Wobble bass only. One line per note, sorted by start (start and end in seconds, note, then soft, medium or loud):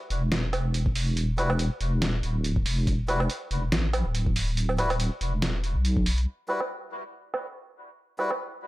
0.10 1.70 E1 loud
1.81 2.22 E1 loud
2.23 2.65 D1 loud
2.66 3.28 E1 medium
3.51 3.71 E1 loud
3.72 4.04 A1 loud
4.05 5.10 D1 medium
5.21 5.75 E1 loud
5.75 6.26 B1 medium